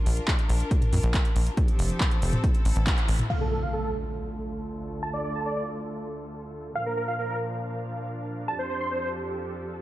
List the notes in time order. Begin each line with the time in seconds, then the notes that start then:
Already playing: D4 F4 A#4
0.06 A#1, open hi-hat
0.17 closed hi-hat
0.28 kick, clap, closed hi-hat
0.39 closed hi-hat
0.49 A#1, open hi-hat
0.60 closed hi-hat
0.71 kick, closed hi-hat
0.82 closed hi-hat, mid tom
0.93 F2, open hi-hat, mid tom
1.03 A#1, closed hi-hat
1.14 kick, clap, closed hi-hat
1.25 closed hi-hat
1.36 A#1, open hi-hat
1.47 closed hi-hat
1.57 F3 C4 D4 G4 A4, kick, closed hi-hat
1.68 closed hi-hat
1.79 F1, open hi-hat
1.90 closed hi-hat
2.01 kick, clap, closed hi-hat
2.11 closed hi-hat
2.22 F1, open hi-hat
2.33 closed hi-hat, mid tom
2.44 E4, kick, closed hi-hat
2.55 closed hi-hat
2.65 A1, open hi-hat
2.76 A1, closed hi-hat
2.87 kick, clap, closed hi-hat
2.98 clap, closed hi-hat
3.08 A1, open hi-hat
3.19 closed hi-hat, mid tom
3.30 D2 D3 A3 F4 A4 F5, crash, impact
3.41 A4
3.52 A4
3.62 F5
3.73 A4
3.84 A4
5.03 A5
5.13 D5
5.24 D5
5.35 A5
5.46 D5
5.57 D5
6.75 A#2 F3 D4 A#4 F5
6.86 A#4
6.97 A#4
7.08 F5
7.19 A#4
7.29 A#4
8.48 F2 F3 G4 A4 A5
8.59 C5
8.70 C5
8.80 C6
8.91 C5
9.02 C5